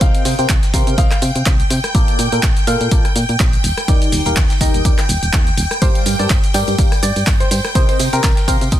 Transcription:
Already playing: string machine G5
0.01 fm bass C2, fm electric piano C4 G4 A#4 C5 D#5, grand piano F5, kick, closed hi-hat, shaker
0.15 closed hi-hat
0.25 fm bass C3, open hi-hat, shaker
0.39 fm bass C3, fm electric piano C4 G4 A#4 C5 G5, closed hi-hat, shaker
0.49 fm bass C2, kick, snare, clap, closed hi-hat, shaker
0.63 snare, closed hi-hat, shaker
0.74 fm bass C3, fm electric piano C4 G4 A#4 C5 F5, kick, closed hi-hat, open hi-hat, shaker
0.87 fm bass C3, closed hi-hat, shaker
0.98 fm bass C2, fm electric piano C4 G4 A#4 C5 D#5, grand piano F5, kick, closed hi-hat, shaker
1.11 cross-stick, clap, closed hi-hat, shaker
1.22 fm bass C3, closed hi-hat, open hi-hat, shaker
1.36 fm bass C3, closed hi-hat, shaker
1.46 fm bass C2, kick, snare, clap, closed hi-hat, shaker
1.60 closed hi-hat, shaker
1.70 fm bass C3, closed hi-hat, open hi-hat, shaker
1.84 cross-stick, closed hi-hat, shaker
1.95 fm bass A#1, fm electric piano A#3 F4 A4 A#4 D5, kick, closed hi-hat, shaker
2.08 closed hi-hat
2.19 fm bass A#2, closed hi-hat, open hi-hat, shaker
2.32 fm bass A#2, fm electric piano A#3 F4 A4 A#4 G5, closed hi-hat, shaker
2.43 fm bass A#1, kick, snare, clap, closed hi-hat, shaker
2.57 closed hi-hat, shaker
2.67 fm bass A#2, fm electric piano A#3 F4 A4 A#4 F5, closed hi-hat, open hi-hat, shaker
2.81 fm bass A#2, closed hi-hat, shaker
2.91 fm bass A#1, fm electric piano A#3 F4 A4 A#4 D5, kick, closed hi-hat, shaker
3.05 cross-stick, closed hi-hat, shaker
3.16 fm bass A#2, closed hi-hat, open hi-hat, shaker
3.29 fm bass A#2, closed hi-hat, shaker
3.40 fm bass A#1, kick, snare, clap, closed hi-hat, shaker
3.53 closed hi-hat, shaker
3.64 fm bass D#1, closed hi-hat, open hi-hat, shaker
3.77 cross-stick, closed hi-hat, shaker
3.88 fm bass D#2, fm electric piano D#3 D#4 G4 A#4 D5, kick, closed hi-hat, shaker
4.02 closed hi-hat, shaker
4.12 fm bass D#1, open hi-hat, shaker
4.26 fm bass D#1, fm electric piano D#3 D#4 G4 A#4 F5, closed hi-hat, shaker
4.37 fm bass D#2, kick, snare, clap, closed hi-hat, shaker
4.50 snare, closed hi-hat, shaker
4.61 fm bass D#1, fm electric piano D#3 D#4 G4 A#4 D#5, kick, closed hi-hat, open hi-hat, shaker
4.74 fm bass D#1, closed hi-hat, shaker
4.85 fm bass D#2, fm electric piano D#3 D#4 G4 A#4 D5, kick, closed hi-hat, shaker
4.98 cross-stick, clap, closed hi-hat, shaker
5.09 fm bass D#1, closed hi-hat, open hi-hat, shaker
5.23 fm bass D#1, closed hi-hat, shaker
5.33 fm bass D#2, kick, snare, clap, closed hi-hat, shaker
5.47 closed hi-hat, shaker
5.58 fm bass D#1, closed hi-hat, open hi-hat, shaker
5.71 cross-stick, closed hi-hat, shaker
5.82 fm bass G1, fm electric piano G3 G4 A#4 D5 F5, grand piano C5, kick, closed hi-hat, tambourine, shaker
5.95 closed hi-hat, tambourine
6.06 fm bass G2, closed hi-hat, open hi-hat, tambourine, shaker
6.19 fm bass G2, fm electric piano G3 G4 A#4 D5 A5, closed hi-hat, tambourine, shaker
6.30 fm bass G1, kick, snare, clap, closed hi-hat, shaker
6.44 closed hi-hat, shaker
6.54 fm bass G2, fm electric piano G3 G4 A#4 D5 G5, closed hi-hat, open hi-hat, tambourine, shaker
6.68 fm bass G2, closed hi-hat, tambourine, shaker
6.78 fm bass G1, fm electric piano G3 G4 A#4 D5 F5, kick, closed hi-hat, tambourine, shaker
6.92 cross-stick, closed hi-hat, tambourine, shaker
7.03 fm bass G2, grand piano D5, closed hi-hat, open hi-hat, tambourine, shaker
7.16 fm bass G2, closed hi-hat, tambourine, shaker
7.27 fm bass G1, kick, snare, clap, closed hi-hat, shaker
7.40 grand piano C5, closed hi-hat, shaker
7.51 fm bass G2, grand piano C5, closed hi-hat, open hi-hat, tambourine, shaker
7.64 cross-stick, closed hi-hat, tambourine, shaker
7.75 fm bass C2, fm electric piano C4 G4 A#4 C5 D#5, grand piano C5, kick, closed hi-hat, tambourine, shaker
7.89 grand piano C5, closed hi-hat, tambourine
7.99 fm bass C3, open hi-hat, tambourine, shaker
8.13 fm bass C3, fm electric piano C4 G4 A#4 C5 G5, grand piano A#4, closed hi-hat, tambourine, shaker
8.24 fm bass C2, kick, snare, clap, closed hi-hat, tambourine, shaker
8.37 snare, closed hi-hat, shaker
8.48 fm bass C3, fm electric piano C4 G4 A#4 C5 F5, kick, closed hi-hat, open hi-hat, tambourine, shaker
8.61 fm bass C3, closed hi-hat, tambourine, shaker
8.71 fm bass C2, fm electric piano C4 G4 A#4 C5 D#5, kick, closed hi-hat, tambourine, shaker

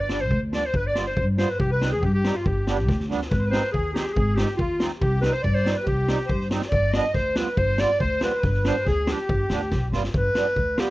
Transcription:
Already playing: upright bass G1, accordion D5
0.00 clarinet D5
0.09 accordion G3 B3 D4, snare
0.21 clarinet C5, accordion C5
0.31 upright bass D2, kick
0.52 accordion G3 B3 D4 D5, clarinet D5, snare
0.65 accordion C5, clarinet C5
0.74 upright bass G1, accordion B4, clarinet B4, kick
0.87 accordion D5, clarinet D5
0.95 accordion G3 B3 F4, snare
1.05 accordion C5, clarinet C5
1.17 upright bass G2, kick
1.37 accordion G3 B3 F4 C5, clarinet C5, snare
1.50 clarinet B4
1.59 upright bass C2, accordion G4 G#4, clarinet G4, kick
1.70 accordion B4, clarinet B4
1.81 accordion G3 C4 D#4, snare
1.92 clarinet G#4, accordion G#4
2.01 upright bass G2, accordion G4, clarinet G4, kick
2.14 clarinet G4
2.24 accordion G3 C4 D#4, snare
2.34 accordion F4, clarinet F4
2.42 upright bass G1, accordion G4, kick
2.48 clarinet G4
2.67 accordion G3 B3 D4, snare
2.88 upright bass D2, kick, snare
3.00 snare
3.09 accordion G3 B3 D4, snare
3.21 snare
3.29 upright bass G#1, accordion B4, clarinet B4, kick, snare
3.38 accordion C5
3.45 accordion B4
3.51 accordion G#3 C4 D#4, clarinet C5, snare
3.72 upright bass D#2, clarinet G#4, accordion G#4, kick
3.93 accordion G#3 C4 D#4, clarinet G4, snare
4.13 upright bass G#1, clarinet G#4, accordion G#4, kick
4.35 accordion G#3 C4 D#4 G4, clarinet G4, snare
4.57 upright bass D#2, clarinet F4, accordion F4, kick
4.80 accordion G#3 C4 D#4, snare
5.00 upright bass C2, clarinet G4, accordion G4, kick
5.21 accordion G3 C4 D#4 B4, clarinet B4, snare
5.32 accordion C5, clarinet C5
5.42 upright bass G2, accordion D5, clarinet D5, kick
5.54 clarinet C5, snare
5.64 accordion G3 C4 D#4, snare
5.72 accordion B4, clarinet C5
5.77 clarinet B4
5.83 upright bass C2, accordion G4, kick
5.87 clarinet G4
6.07 accordion G3 C4 D#4, snare
6.26 upright bass G2, accordion C5, kick
6.41 snare
6.51 accordion G3 C4 D#4, snare
6.61 snare
6.68 upright bass G1, accordion D5, clarinet D5, kick
6.90 accordion G3 B3 D#5, clarinet D#5, snare
6.94 accordion D4
7.14 upright bass D2, clarinet C5, accordion C5, kick, snare
7.35 accordion G3 B3 F4 B4, clarinet B4, snare
7.57 upright bass G1, clarinet C5, accordion C5, kick
7.78 accordion G3 B3 F4 D5, clarinet D5, snare
8.00 upright bass D2, accordion C5, clarinet C5, kick
8.21 accordion G3 B3 F4, clarinet B4, snare
8.34 accordion C5
8.39 accordion B4, snare
8.43 upright bass G1, clarinet B4, kick
8.54 snare
8.64 accordion G3 B3 D4, clarinet C5, snare
8.78 accordion B4
8.85 upright bass D2, accordion G#4, clarinet G#4, kick, snare
9.06 accordion G3 B3 D4 G4, snare
9.11 clarinet G4
9.29 upright bass G1, kick
9.49 upright bass D2, accordion G3 B3 D4, snare
9.71 upright bass B1, kick, snare
9.92 upright bass G1, accordion G3 B3 F4, snare
10.04 snare
10.14 upright bass G1, clarinet B4, kick
10.35 accordion G3 B3 D4, snare
10.56 upright bass D2, kick
10.77 accordion G3 B3 F4, clarinet G4, snare

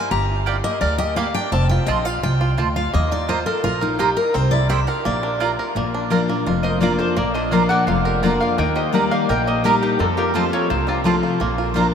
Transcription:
Already playing: five-string banjo E4 A#4, steel-string acoustic guitar G#5
0.11 upright bass G1, five-string banjo G4, steel-string acoustic guitar A#5
0.46 mandolin A#3 G4 D5 G5, five-string banjo G4
0.64 five-string banjo A#3, steel-string acoustic guitar D#5
0.81 upright bass D2, five-string banjo A#4, steel-string acoustic guitar D5
0.98 five-string banjo G4, steel-string acoustic guitar D#5
1.16 mandolin A#3 G4 D5 G5, five-string banjo A#3, steel-string acoustic guitar F5
1.34 five-string banjo D4, steel-string acoustic guitar G5
1.52 upright bass F1, five-string banjo C4, steel-string acoustic guitar A5
1.69 five-string banjo F4, steel-string acoustic guitar G5
1.86 upright bass A#1, mandolin C4 F4 C5 A5, five-string banjo F4, steel-string acoustic guitar D#5
2.05 five-string banjo F4, steel-string acoustic guitar F5
2.23 upright bass C2, five-string banjo F4, steel-string acoustic guitar G5
2.41 five-string banjo F4
2.58 upright bass D2, mandolin C4 F4 C5 A5, five-string banjo F4
2.76 five-string banjo F4, steel-string acoustic guitar F5
2.94 upright bass D#2, five-string banjo A#3, steel-string acoustic guitar D#5
3.12 five-string banjo D#4, steel-string acoustic guitar D5
3.28 mandolin A#3 F4 D#5 A#5, five-string banjo F4, steel-string acoustic guitar C5
3.46 steel-string acoustic guitar A4, five-string banjo A#4
3.64 upright bass A#1, five-string banjo F4, steel-string acoustic guitar A#4
3.81 steel-string acoustic guitar D#4, five-string banjo A#4
3.99 mandolin A#3 F4 D#5 A#5, five-string banjo D#4, steel-string acoustic guitar G4
4.17 steel-string acoustic guitar A#4, five-string banjo A#4
4.34 upright bass C2, five-string banjo C4, steel-string acoustic guitar C5
4.51 five-string banjo E4, steel-string acoustic guitar D5
4.69 mandolin C4 E4 C5 G5, five-string banjo G4, steel-string acoustic guitar E5
4.87 five-string banjo A#4, steel-string acoustic guitar F5
5.05 upright bass A#1, five-string banjo A#3, steel-string acoustic guitar D5
5.23 five-string banjo D4
5.40 mandolin A#3 F4 D5 A#5, five-string banjo F4
5.59 five-string banjo A#4
5.75 upright bass A#1, steel-string acoustic guitar A#2, five-string banjo A#3
5.95 five-string banjo D4
6.10 steel-string acoustic guitar F3 A#3 D4 F4, mandolin A#3 F4 D5 A#5, five-string banjo A#4
6.28 five-string banjo A#3, steel-string acoustic guitar D4 F4
6.46 upright bass F1, steel-string acoustic guitar F2, five-string banjo F4
6.63 five-string banjo A#4, resonator guitar played with a steel bar C5, mandolin D#5
6.81 steel-string acoustic guitar F3 A#3 D4 F4, mandolin A#3 F4 D5 A#5, five-string banjo F4, resonator guitar played with a steel bar A#4
6.98 five-string banjo A#3, resonator guitar played with a steel bar A4, mandolin C5
7.16 upright bass A#1, steel-string acoustic guitar A#2, five-string banjo A#3, resonator guitar played with a steel bar A#4, mandolin D5
7.34 five-string banjo D4, resonator guitar played with a steel bar C5, mandolin D#5
7.51 steel-string acoustic guitar F3 A#3 D4 F4, mandolin A#3 F4 D5 F5 A#5, five-string banjo A#4, resonator guitar played with a steel bar D5
7.69 five-string banjo A#3, resonator guitar played with a steel bar D5, mandolin F#5
7.87 upright bass F1, steel-string acoustic guitar F2, five-string banjo F4, resonator guitar played with a steel bar D5, mandolin F5
8.05 resonator guitar played with a steel bar G4, five-string banjo A#4, mandolin A#4
8.23 steel-string acoustic guitar F3 A#3 D4 F4, mandolin A#3 F4 D5 A#5, five-string banjo F4, resonator guitar played with a steel bar A#4
8.40 five-string banjo A#3, resonator guitar played with a steel bar D5, mandolin F5
8.58 upright bass D#2, steel-string acoustic guitar D#3, five-string banjo A#3, resonator guitar played with a steel bar D#5, mandolin G5
8.75 five-string banjo G4, resonator guitar played with a steel bar C5, mandolin D#5
8.93 steel-string acoustic guitar G3 A#3 D#4 G4, mandolin A#3 G4 D5 D#5 A#5, five-string banjo D#4, resonator guitar played with a steel bar A#4
9.11 five-string banjo A#3, resonator guitar played with a steel bar D5, mandolin F5
9.29 upright bass A#1, steel-string acoustic guitar A#2, five-string banjo A#4, resonator guitar played with a steel bar D#5, mandolin G5
9.47 five-string banjo A#3, resonator guitar played with a steel bar C5, mandolin D#5
9.64 steel-string acoustic guitar G3 A#3 D#4 G4, mandolin A#3 G4 A#4 D#5 A#5, resonator guitar played with a steel bar G4, five-string banjo A#4
9.82 five-string banjo D#4, resonator guitar played with a steel bar D#4, mandolin G4
9.99 upright bass F2, steel-string acoustic guitar F2, five-string banjo C4, resonator guitar played with a steel bar F4, mandolin A4
10.17 five-string banjo F4, resonator guitar played with a steel bar G4, mandolin A#4
10.34 steel-string acoustic guitar F3 A3 C4 F4, mandolin C4 F4 C5 A5, five-string banjo F4, resonator guitar played with a steel bar A4
10.53 five-string banjo F4, resonator guitar played with a steel bar A4, mandolin C#5
10.70 upright bass C2, steel-string acoustic guitar C3, five-string banjo F4, resonator guitar played with a steel bar A4, mandolin C5
10.87 five-string banjo C4, resonator guitar played with a steel bar D4, mandolin F4
11.04 steel-string acoustic guitar F3 A3 C4 F4, mandolin C4 F4 C5 A5, five-string banjo F4
11.23 five-string banjo F4
11.40 upright bass A#1, steel-string acoustic guitar A#2, five-string banjo A#3
11.58 five-string banjo F4
11.74 steel-string acoustic guitar F3 A#3 D4 F4, mandolin A#3 F4 D5 A#5, five-string banjo D4

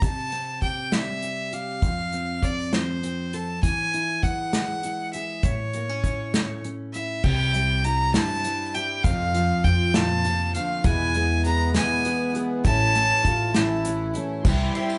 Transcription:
0.02 steel-string acoustic guitar C3, fiddle A5, kick, closed hi-hat
0.32 steel-string acoustic guitar C4, closed hi-hat
0.62 steel-string acoustic guitar G4, fiddle G5, kick, closed hi-hat
0.92 steel-string acoustic guitar G3, fiddle E5, snare, closed hi-hat
1.22 steel-string acoustic guitar C4, closed hi-hat
1.52 steel-string acoustic guitar G4, fiddle F5, closed hi-hat
1.82 steel-string acoustic guitar F2, kick, closed hi-hat
2.12 steel-string acoustic guitar C4, closed hi-hat
2.43 steel-string acoustic guitar A4, fiddle D5, kick, closed hi-hat
2.72 steel-string acoustic guitar F3, fiddle C5, snare, closed hi-hat
3.03 steel-string acoustic guitar C4, closed hi-hat
3.33 steel-string acoustic guitar A4, fiddle A5, closed hi-hat
3.63 steel-string acoustic guitar E3, fiddle G#5, kick, closed hi-hat
3.93 steel-string acoustic guitar E4, closed hi-hat
4.22 steel-string acoustic guitar G#4, fiddle F#5, kick, closed hi-hat
4.53 steel-string acoustic guitar G#3, snare, closed hi-hat
4.83 steel-string acoustic guitar E4, closed hi-hat
5.13 steel-string acoustic guitar G#4, fiddle E5, closed hi-hat
5.43 steel-string acoustic guitar A2, fiddle C#5, kick, closed hi-hat
5.73 steel-string acoustic guitar A#3, closed hi-hat
5.89 steel-string acoustic guitar C#4
6.04 steel-string acoustic guitar E4, kick, closed hi-hat
6.34 steel-string acoustic guitar A3, snare, closed hi-hat
6.64 steel-string acoustic guitar C#4, closed hi-hat
6.94 steel-string acoustic guitar E4, fiddle E5, closed hi-hat
7.23 upright bass C2, twelve-string acoustic guitar C3 E3 G3 C4 E4, steel-string acoustic guitar C3, fiddle G5, kick, crash
7.53 steel-string acoustic guitar G3, twelve-string acoustic guitar G3 C4 E4, closed hi-hat
7.84 twelve-string acoustic guitar E3 G3 C4 E4, steel-string acoustic guitar E4, fiddle A#5, closed hi-hat
8.14 steel-string acoustic guitar G2, twelve-string acoustic guitar C3 E3 G3 C4 E4, fiddle A5, snare, closed hi-hat
8.44 twelve-string acoustic guitar E3 G3 C4 E4, steel-string acoustic guitar E4, closed hi-hat
8.74 twelve-string acoustic guitar G3 C4 E4, steel-string acoustic guitar G4, fiddle G5, closed hi-hat
9.04 twelve-string acoustic guitar F2 C3 F3 A3 C4 F4, upright bass F2, steel-string acoustic guitar F2, fiddle F5, kick, closed hi-hat
9.34 steel-string acoustic guitar F3, twelve-string acoustic guitar F3 A3 C4 F4, closed hi-hat
9.64 upright bass F2, twelve-string acoustic guitar F3 A3 C4 F4, steel-string acoustic guitar F4, fiddle G5, kick, closed hi-hat
9.94 twelve-string acoustic guitar F2 C3 F3 A3 C4 F4, steel-string acoustic guitar A#2, fiddle A5, snare, closed hi-hat
10.24 steel-string acoustic guitar C3, twelve-string acoustic guitar F3 A3 C4 F4, closed hi-hat
10.54 steel-string acoustic guitar D3, twelve-string acoustic guitar F3 A3 C4 F4, fiddle F5, closed hi-hat
10.83 twelve-string acoustic guitar E2 B2 E3 G#3 B3 E4, upright piano E2 E3 B3 E4 G#4 E5, upright bass E2, steel-string acoustic guitar E3, trombone B3, fiddle G#5, kick, closed hi-hat
11.14 twelve-string acoustic guitar E3 G#3 B3 E4, steel-string acoustic guitar G#3, closed hi-hat
11.44 twelve-string acoustic guitar E3 G#3 B3 E4, steel-string acoustic guitar G#4, fiddle A#5, closed hi-hat
11.74 twelve-string acoustic guitar E2 B2 E3 G#3 B3 E4, steel-string acoustic guitar E3, fiddle G#5, snare, closed hi-hat
12.03 twelve-string acoustic guitar E3 G#3 B3 E4, steel-string acoustic guitar G#4, closed hi-hat
12.34 twelve-string acoustic guitar E3 G#3 B3 E4, steel-string acoustic guitar G#4, closed hi-hat
12.63 upright bass A1, upright piano A1 A2 C#4 A4 E5, twelve-string acoustic guitar A2 E3 A3 C#4 E4, steel-string acoustic guitar A2, trombone C#4, fiddle A5, kick, closed hi-hat
12.93 steel-string acoustic guitar A3, twelve-string acoustic guitar A3 C#4 E4, closed hi-hat
13.25 upright bass A1, twelve-string acoustic guitar A3 C#4, trombone F4, kick, closed hi-hat
13.54 twelve-string acoustic guitar A2 E3 A3 C#4 E4, steel-string acoustic guitar E3, trombone E4, snare, closed hi-hat
13.85 twelve-string acoustic guitar E3 A3 C#4 E4, steel-string acoustic guitar E4, closed hi-hat
14.14 twelve-string acoustic guitar A3 C#4 E4, trombone C#4, steel-string acoustic guitar A4, closed hi-hat
14.43 upright piano C2 C3 E3 G3 C4 C5 G5, upright bass C2, twelve-string acoustic guitar C3 E3 G3 C4 E4, trombone E4, string section G4 C5 G5 C6, kick, crash, tambourine
14.75 twelve-string acoustic guitar G3 C4 E4, ride, tambourine
14.90 tambourine

